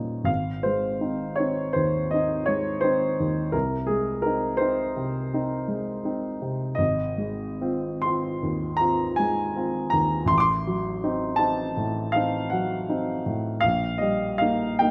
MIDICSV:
0, 0, Header, 1, 2, 480
1, 0, Start_track
1, 0, Tempo, 735294
1, 185, Time_signature, 9, 3, 24, 8
1, 1149, Tempo, 710900
1, 3069, Tempo, 727273
1, 4509, Tempo, 825309
1, 5469, Tempo, 741656
1, 8829, Tempo, 782269
1, 9614, End_track
2, 0, Start_track
2, 0, Title_t, "Grand piano"
2, 0, Program_c, 0, 0
2, 0, Control_c, 0, 64, 127
2, 0, Note_on_c, 0, 39, 41
2, 0, Note_on_c, 0, 46, 31
2, 0, Note_on_c, 0, 55, 31
2, 0, Note_on_c, 0, 61, 31
2, 0, Note_on_c, 0, 63, 34
2, 0, Note_on_c, 0, 75, 55
2, 154, Note_on_c, 0, 32, 41
2, 163, Note_off_c, 0, 39, 0
2, 165, Note_on_c, 0, 77, 67
2, 183, Note_off_c, 0, 46, 0
2, 198, Control_c, 0, 64, 0
2, 202, Note_off_c, 0, 75, 0
2, 203, Note_off_c, 0, 61, 0
2, 204, Note_off_c, 0, 55, 0
2, 204, Note_off_c, 0, 63, 0
2, 313, Control_c, 0, 64, 127
2, 412, Note_on_c, 0, 72, 57
2, 413, Note_off_c, 0, 77, 0
2, 429, Note_on_c, 0, 56, 29
2, 657, Note_on_c, 0, 60, 31
2, 660, Note_on_c, 0, 63, 33
2, 809, Note_off_c, 0, 56, 0
2, 878, Note_off_c, 0, 60, 0
2, 879, Note_off_c, 0, 63, 0
2, 885, Note_on_c, 0, 73, 61
2, 898, Note_off_c, 0, 72, 0
2, 905, Note_on_c, 0, 60, 32
2, 911, Note_on_c, 0, 63, 31
2, 1124, Note_off_c, 0, 60, 0
2, 1128, Note_off_c, 0, 63, 0
2, 1129, Note_on_c, 0, 72, 62
2, 1139, Note_off_c, 0, 73, 0
2, 1147, Note_on_c, 0, 39, 31
2, 1383, Note_on_c, 0, 75, 61
2, 1384, Note_off_c, 0, 72, 0
2, 1406, Note_on_c, 0, 63, 34
2, 1408, Note_on_c, 0, 60, 32
2, 1537, Note_off_c, 0, 39, 0
2, 1615, Note_off_c, 0, 63, 0
2, 1616, Note_off_c, 0, 60, 0
2, 1619, Note_on_c, 0, 73, 62
2, 1627, Note_off_c, 0, 75, 0
2, 1638, Note_on_c, 0, 56, 32
2, 1856, Note_on_c, 0, 72, 63
2, 1864, Note_off_c, 0, 73, 0
2, 1873, Note_on_c, 0, 60, 31
2, 1877, Note_on_c, 0, 63, 34
2, 2016, Note_off_c, 0, 56, 0
2, 2087, Note_off_c, 0, 60, 0
2, 2090, Note_off_c, 0, 63, 0
2, 2120, Note_on_c, 0, 39, 34
2, 2307, Note_off_c, 0, 32, 0
2, 2338, Note_on_c, 0, 36, 40
2, 2339, Note_on_c, 0, 70, 60
2, 2343, Note_off_c, 0, 72, 0
2, 2355, Note_off_c, 0, 39, 0
2, 2362, Control_c, 0, 64, 0
2, 2483, Control_c, 0, 64, 127
2, 2571, Note_on_c, 0, 68, 60
2, 2583, Note_off_c, 0, 70, 0
2, 2589, Note_on_c, 0, 56, 34
2, 2810, Note_on_c, 0, 70, 62
2, 2819, Note_off_c, 0, 68, 0
2, 2835, Note_on_c, 0, 60, 32
2, 2837, Note_on_c, 0, 63, 35
2, 2973, Note_off_c, 0, 56, 0
2, 3046, Note_on_c, 0, 72, 64
2, 3049, Note_off_c, 0, 60, 0
2, 3050, Note_off_c, 0, 63, 0
2, 3061, Note_off_c, 0, 70, 0
2, 3066, Note_on_c, 0, 60, 34
2, 3071, Note_on_c, 0, 63, 34
2, 3282, Note_off_c, 0, 60, 0
2, 3285, Note_off_c, 0, 63, 0
2, 3307, Note_on_c, 0, 48, 36
2, 3551, Note_on_c, 0, 60, 33
2, 3556, Note_on_c, 0, 63, 39
2, 3693, Note_off_c, 0, 48, 0
2, 3765, Note_off_c, 0, 60, 0
2, 3768, Note_off_c, 0, 63, 0
2, 3781, Note_on_c, 0, 56, 36
2, 4023, Note_on_c, 0, 60, 34
2, 4024, Note_on_c, 0, 63, 37
2, 4162, Note_off_c, 0, 56, 0
2, 4239, Note_off_c, 0, 60, 0
2, 4240, Note_off_c, 0, 63, 0
2, 4251, Note_off_c, 0, 72, 0
2, 4266, Note_on_c, 0, 48, 36
2, 4478, Note_off_c, 0, 36, 0
2, 4485, Note_on_c, 0, 75, 71
2, 4506, Note_on_c, 0, 32, 48
2, 4512, Note_off_c, 0, 48, 0
2, 4519, Control_c, 0, 64, 0
2, 4616, Control_c, 0, 64, 127
2, 4738, Note_on_c, 0, 56, 36
2, 4991, Note_on_c, 0, 60, 36
2, 4993, Note_on_c, 0, 65, 37
2, 5139, Note_off_c, 0, 56, 0
2, 5216, Note_off_c, 0, 60, 0
2, 5217, Note_off_c, 0, 65, 0
2, 5225, Note_on_c, 0, 84, 70
2, 5226, Note_off_c, 0, 75, 0
2, 5246, Note_on_c, 0, 60, 36
2, 5246, Note_on_c, 0, 65, 37
2, 5452, Note_off_c, 0, 60, 0
2, 5452, Note_off_c, 0, 65, 0
2, 5464, Note_on_c, 0, 39, 38
2, 5682, Note_on_c, 0, 82, 78
2, 5704, Note_on_c, 0, 60, 35
2, 5708, Note_off_c, 0, 84, 0
2, 5711, Note_on_c, 0, 65, 40
2, 5854, Note_off_c, 0, 39, 0
2, 5924, Note_off_c, 0, 60, 0
2, 5928, Note_off_c, 0, 65, 0
2, 5938, Note_off_c, 0, 82, 0
2, 5938, Note_on_c, 0, 80, 71
2, 5960, Note_on_c, 0, 56, 40
2, 6198, Note_on_c, 0, 60, 37
2, 6201, Note_on_c, 0, 65, 40
2, 6346, Note_off_c, 0, 56, 0
2, 6415, Note_off_c, 0, 60, 0
2, 6417, Note_off_c, 0, 65, 0
2, 6417, Note_on_c, 0, 82, 77
2, 6431, Note_off_c, 0, 80, 0
2, 6436, Note_on_c, 0, 39, 39
2, 6646, Note_on_c, 0, 33, 52
2, 6649, Note_off_c, 0, 32, 0
2, 6659, Note_on_c, 0, 84, 81
2, 6667, Note_off_c, 0, 82, 0
2, 6676, Note_off_c, 0, 39, 0
2, 6689, Control_c, 0, 64, 0
2, 6712, Note_off_c, 0, 84, 0
2, 6725, Note_on_c, 0, 86, 76
2, 6740, Note_on_c, 0, 84, 87
2, 6766, Note_off_c, 0, 86, 0
2, 6807, Control_c, 0, 64, 127
2, 6915, Note_on_c, 0, 54, 40
2, 7153, Note_on_c, 0, 63, 42
2, 7154, Note_on_c, 0, 60, 40
2, 7295, Note_off_c, 0, 54, 0
2, 7362, Note_on_c, 0, 81, 80
2, 7366, Note_off_c, 0, 60, 0
2, 7366, Note_off_c, 0, 63, 0
2, 7377, Note_off_c, 0, 84, 0
2, 7380, Note_on_c, 0, 60, 38
2, 7382, Note_on_c, 0, 63, 39
2, 7599, Note_off_c, 0, 60, 0
2, 7600, Note_off_c, 0, 63, 0
2, 7626, Note_on_c, 0, 45, 39
2, 7854, Note_on_c, 0, 77, 76
2, 7858, Note_off_c, 0, 81, 0
2, 7872, Note_on_c, 0, 60, 37
2, 7879, Note_on_c, 0, 63, 41
2, 8017, Note_off_c, 0, 45, 0
2, 8091, Note_off_c, 0, 60, 0
2, 8095, Note_off_c, 0, 63, 0
2, 8098, Note_on_c, 0, 78, 65
2, 8106, Note_off_c, 0, 77, 0
2, 8118, Note_on_c, 0, 54, 39
2, 8354, Note_on_c, 0, 63, 41
2, 8356, Note_on_c, 0, 60, 38
2, 8497, Note_off_c, 0, 54, 0
2, 8566, Note_off_c, 0, 63, 0
2, 8567, Note_off_c, 0, 60, 0
2, 8590, Note_on_c, 0, 45, 39
2, 8787, Note_off_c, 0, 33, 0
2, 8814, Note_on_c, 0, 77, 86
2, 8820, Note_off_c, 0, 78, 0
2, 8829, Note_off_c, 0, 45, 0
2, 8836, Note_on_c, 0, 34, 48
2, 8840, Control_c, 0, 64, 0
2, 8938, Control_c, 0, 64, 127
2, 9045, Note_on_c, 0, 75, 59
2, 9055, Note_off_c, 0, 77, 0
2, 9064, Note_on_c, 0, 55, 40
2, 9292, Note_off_c, 0, 75, 0
2, 9292, Note_on_c, 0, 77, 75
2, 9312, Note_on_c, 0, 58, 36
2, 9313, Note_on_c, 0, 63, 42
2, 9448, Note_off_c, 0, 55, 0
2, 9528, Note_off_c, 0, 58, 0
2, 9528, Note_off_c, 0, 63, 0
2, 9542, Note_off_c, 0, 77, 0
2, 9542, Note_on_c, 0, 79, 70
2, 9553, Note_on_c, 0, 58, 33
2, 9562, Note_on_c, 0, 63, 37
2, 9614, Note_off_c, 0, 34, 0
2, 9614, Note_off_c, 0, 58, 0
2, 9614, Note_off_c, 0, 63, 0
2, 9614, Note_off_c, 0, 79, 0
2, 9614, End_track
0, 0, End_of_file